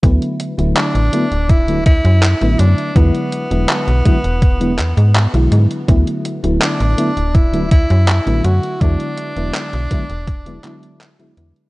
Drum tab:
HH |xxxxxxxxxxxxxxxx|xxxxxxxxxxxxxxxx|xxxxxxxxxxxxxxxx|xxxxxxxxxxxxxxxx|
CP |----x-------x---|----x-----x-x---|----x-------x---|----x-----x-x---|
BD |o-------o-o-----|o-----o-o-------|o-------o-o-----|o-----o-o-------|